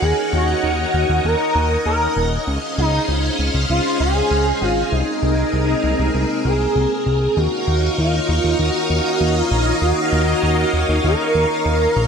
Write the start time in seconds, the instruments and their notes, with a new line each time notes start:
Already playing: string machine D#4 A#4 C#5 F#5
0.02 analog synth bass D#2, analog synth lead G#4, string machine D#5
0.33 analog synth bass D#2, analog synth lead F#4
0.63 analog synth bass D#2
0.94 analog synth bass D#2
1.09 analog synth bass D#2
1.25 analog synth bass D#2, analog synth lead A#4
1.55 analog synth bass D#2
1.86 analog synth bass D#2, analog synth lead A#4
2.16 analog synth bass D#1
2.47 analog synth bass C#2, string machine C#4 G#4 C5 F5
2.78 analog synth bass C#2, analog synth lead D#4
3.08 analog synth bass C#2
3.39 analog synth bass C#2
3.54 analog synth bass C#2
3.70 analog synth bass C#2, analog synth lead F4
4.00 analog synth bass C#2, analog synth lead G#4
4.31 analog synth bass C#2
4.61 analog synth bass G#1, analog synth lead F4
4.92 analog synth bass C2, string machine C4 A#4, analog synth lead D#4
5.22 analog synth bass C2
5.53 analog synth bass C2
5.84 analog synth bass C2
5.99 analog synth bass C2
6.14 analog synth bass C2
6.45 analog synth bass C2, analog synth lead G#4
6.76 analog synth bass C2
7.06 analog synth bass C2
7.37 analog synth bass D#2, string machine D#4 A#4 C#5 D#5 F5, analog synth lead F#4
7.67 analog synth bass D#2
7.98 analog synth bass D#2, analog synth lead F4
8.29 analog synth bass D#2
8.44 analog synth bass D#2
8.59 analog synth bass D#2, analog synth lead F#4
8.90 analog synth bass D#2
9.21 analog synth bass D#2
9.38 analog synth lead F4
9.51 analog synth bass A#1
9.82 analog synth bass D#2, analog synth lead F#4
10.12 analog synth bass D#2
10.43 analog synth bass D#2
10.73 analog synth bass D#2
10.89 analog synth bass D#2
11.04 analog synth bass D#2, analog synth lead A#4
11.35 analog synth bass D#2, analog synth lead A#4
11.65 analog synth bass D#2
11.96 analog synth bass A#1